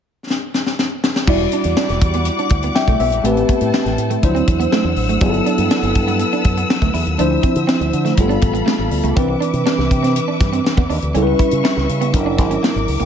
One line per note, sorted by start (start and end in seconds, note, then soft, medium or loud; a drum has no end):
0.30 snare medium
0.54 snare medium
0.66 snare medium
0.79 snare medium
1.04 snare loud
1.16 snare medium
1.27 1.46 E1 medium
1.27 3.20 G3 medium
1.27 3.23 G3 medium
1.27 3.21 E4 medium
1.27 1.38 E4 medium
1.27 3.21 F#4 medium
1.27 3.21 D5 medium
1.27 3.23 F#5 medium
1.27 3.23 D6 medium
1.27 kick loud
1.27 crash medium
1.41 muted clean electric guitar stroke soft
1.52 1.63 D4 medium
1.52 closed hi-hat medium
1.64 1.74 E2 medium
1.64 closed hi-hat medium
1.77 1.87 D4 medium
1.77 snare loud
1.89 1.98 E1 medium
1.89 muted clean electric guitar stroke soft
1.89 snare soft
1.89 closed hi-hat soft
2.01 2.28 E2 medium
2.01 kick medium
2.01 closed hi-hat medium
2.14 2.24 B3 medium
2.14 closed hi-hat medium
2.25 closed hi-hat medium
2.39 2.49 D4 medium
2.39 closed hi-hat soft
2.49 2.69 D2 medium
2.49 muted clean electric guitar stroke soft
2.49 kick medium
2.49 closed hi-hat medium
2.63 2.73 B3 medium
2.63 closed hi-hat medium
2.75 2.99 E5 medium
2.75 2.99 G5 medium
2.75 muted clean electric guitar stroke soft
2.75 snare loud
2.87 2.97 B1 medium
2.87 2.98 A3 medium
2.87 kick medium
2.87 closed hi-hat soft
3.00 3.12 B1 medium
3.00 3.10 B3 medium
3.00 3.47 E5 medium
3.00 open hi-hat medium
3.12 3.21 A#1 medium
3.12 closed hi-hat medium
3.24 3.42 A1 loud
3.24 4.21 A3 medium
3.24 3.35 A3 medium
3.24 4.21 C4 medium
3.24 4.22 G4 medium
3.24 4.22 A4 medium
3.24 4.22 B4 medium
3.24 4.22 G5 medium
3.24 4.22 A5 medium
3.24 closed hi-hat medium
3.37 muted clean electric guitar stroke soft
3.37 closed hi-hat soft
3.49 3.59 B3 medium
3.49 kick medium
3.49 closed hi-hat medium
3.61 3.70 A2 medium
3.61 closed hi-hat medium
3.74 3.84 B3 medium
3.74 snare loud
3.85 3.95 A1 medium
3.85 muted clean electric guitar stroke soft
3.85 snare soft
3.85 closed hi-hat soft
3.97 4.16 A2 medium
3.97 closed hi-hat medium
4.10 4.20 A3 medium
4.10 closed hi-hat soft
4.22 4.41 D2 loud
4.22 4.29 F3 medium
4.22 5.20 D4 medium
4.22 5.20 E4 medium
4.22 5.21 C5 medium
4.22 5.20 C5 medium
4.22 7.16 F#5 medium
4.22 8.14 E6 medium
4.22 kick medium
4.22 closed hi-hat medium
4.28 5.20 F#3 medium
4.35 4.45 C4 medium
4.35 closed hi-hat soft
4.47 4.66 E2 medium
4.47 muted clean electric guitar stroke soft
4.47 kick medium
4.47 closed hi-hat medium
4.60 4.70 B3 medium
4.60 closed hi-hat medium
4.72 4.82 A3 medium
4.72 snare loud
4.84 4.93 E2 medium
4.84 muted clean electric guitar stroke soft
4.96 5.08 A1 medium
4.96 open hi-hat medium
5.08 5.18 G#1 medium
5.08 5.19 A3 medium
5.08 closed hi-hat medium
5.21 5.40 G1 loud
5.21 7.15 F#3 medium
5.21 5.32 G3 medium
5.21 7.15 B3 medium
5.21 7.15 E4 medium
5.21 5.29 G#4 medium
5.21 7.18 B4 medium
5.21 7.18 A5 medium
5.21 kick loud
5.21 closed hi-hat medium
5.29 7.19 A4 medium
5.34 muted clean electric guitar stroke soft
5.34 closed hi-hat soft
5.46 5.56 D4 medium
5.46 closed hi-hat medium
5.58 5.67 G2 medium
5.58 closed hi-hat medium
5.71 5.81 D4 medium
5.71 snare loud
5.83 5.92 G1 medium
5.83 muted clean electric guitar stroke soft
5.83 closed hi-hat soft
5.95 6.22 G2 loud
5.95 kick medium
5.95 closed hi-hat medium
6.08 6.18 B3 medium
6.08 closed hi-hat medium
6.19 closed hi-hat medium
6.33 6.43 D4 medium
6.33 closed hi-hat soft
6.44 6.63 F#2 medium
6.44 muted clean electric guitar stroke soft
6.44 kick medium
6.44 closed hi-hat medium
6.57 6.67 B3 medium
6.57 closed hi-hat medium
6.70 muted clean electric guitar stroke soft
6.70 snare loud
6.82 6.91 D2 medium
6.82 6.92 A3 medium
6.82 kick medium
6.82 closed hi-hat soft
6.94 7.03 E2 medium
6.94 7.04 E4 medium
6.94 open hi-hat medium
7.06 7.15 D#2 medium
7.06 closed hi-hat soft
7.18 7.37 D2 medium
7.18 8.15 F3 medium
7.18 7.29 D4 medium
7.18 8.16 D4 medium
7.18 8.16 E4 medium
7.18 8.17 C5 medium
7.18 8.17 E5 medium
7.18 closed hi-hat medium
7.31 muted clean electric guitar stroke soft
7.43 7.53 C4 medium
7.43 kick medium
7.43 closed hi-hat medium
7.56 7.65 D3 medium
7.56 closed hi-hat medium
7.67 7.78 C4 medium
7.67 snare loud
7.80 7.90 D2 medium
7.80 muted clean electric guitar stroke soft
7.80 closed hi-hat soft
7.93 8.11 D3 loud
7.93 closed hi-hat medium
8.05 8.15 A3 medium
8.05 snare soft
8.05 closed hi-hat soft
8.17 8.36 G1 loud
8.17 9.15 G3 medium
8.17 8.24 A3 medium
8.17 9.16 F4 medium
8.17 9.16 A4 medium
8.17 9.16 F5 medium
8.17 9.15 B5 medium
8.17 kick medium
8.17 closed hi-hat medium
8.25 9.18 B3 medium
8.29 8.40 D4 medium
8.29 closed hi-hat soft
8.41 8.60 A1 medium
8.41 muted clean electric guitar stroke soft
8.41 kick medium
8.41 closed hi-hat medium
8.54 8.64 B3 medium
8.54 closed hi-hat soft
8.66 8.76 A3 medium
8.66 snare loud
8.78 8.88 A1 medium
8.78 muted clean electric guitar stroke soft
8.91 9.00 D2 medium
8.91 open hi-hat medium
9.04 9.13 C#2 medium
9.04 9.14 A3 medium
9.04 closed hi-hat soft
9.15 9.35 C2 medium
9.15 11.10 E3 medium
9.15 11.10 C4 medium
9.15 9.26 C4 medium
9.15 11.11 D4 medium
9.15 11.12 B4 medium
9.15 11.11 B4 medium
9.15 11.12 E5 medium
9.15 11.12 D6 medium
9.15 kick loud
9.15 closed hi-hat medium
9.29 muted clean electric guitar stroke soft
9.40 9.51 D4 medium
9.40 closed hi-hat medium
9.53 9.62 C3 medium
9.53 closed hi-hat medium
9.66 9.76 D4 medium
9.66 snare loud
9.78 9.87 C2 medium
9.78 muted clean electric guitar stroke soft
9.78 snare soft
9.91 10.18 C3 medium
9.91 kick medium
9.91 closed hi-hat medium
10.03 10.13 C4 medium
10.03 snare soft
10.03 closed hi-hat medium
10.16 closed hi-hat medium
10.28 10.38 D4 medium
10.40 10.58 G2 medium
10.40 muted clean electric guitar stroke soft
10.40 kick medium
10.40 snare soft
10.40 closed hi-hat medium
10.53 10.63 C4 medium
10.53 closed hi-hat medium
10.65 muted clean electric guitar stroke soft
10.65 snare loud
10.77 10.86 E2 medium
10.77 10.87 B3 medium
10.77 kick medium
10.90 10.99 D#2 medium
10.90 11.00 D4 medium
10.90 open hi-hat medium
11.02 11.11 D2 medium
11.02 closed hi-hat soft
11.14 11.33 C#2 medium
11.14 12.11 G3 medium
11.14 11.24 C#4 medium
11.14 12.11 C#4 medium
11.14 12.12 E4 medium
11.14 11.21 A4 medium
11.14 12.13 B4 medium
11.14 13.05 E5 medium
11.14 12.13 C#6 medium
11.14 closed hi-hat medium
11.22 12.15 B4 medium
11.27 muted clean electric guitar stroke soft
11.39 11.49 E4 medium
11.39 kick medium
11.39 closed hi-hat medium
11.51 11.61 C#3 medium
11.51 closed hi-hat medium
11.64 11.74 E4 medium
11.64 snare loud
11.77 11.86 C#2 medium
11.77 muted clean electric guitar stroke soft
11.77 snare soft
11.89 12.15 C#3 medium
11.89 closed hi-hat medium
12.01 12.11 B3 medium
12.01 closed hi-hat medium
12.13 12.39 F#1 loud
12.13 13.05 F#3 medium
12.13 13.05 D4 medium
12.13 13.05 E4 medium
12.13 13.05 A#4 medium
12.13 13.05 D6 medium
12.13 kick loud
12.13 closed hi-hat loud
12.26 12.36 D4 medium
12.38 12.56 G#1 medium
12.38 muted clean electric guitar stroke soft
12.38 kick medium
12.38 snare soft
12.38 closed hi-hat medium
12.51 12.61 C#4 medium
12.51 closed hi-hat medium
12.63 12.73 A#3 medium
12.63 snare loud
12.75 12.85 G#1 medium
12.75 muted clean electric guitar stroke soft
12.75 closed hi-hat soft
12.88 12.97 C#2 medium
12.88 open hi-hat medium
13.00 13.05 C2 medium
13.00 13.05 A#3 medium
13.00 closed hi-hat medium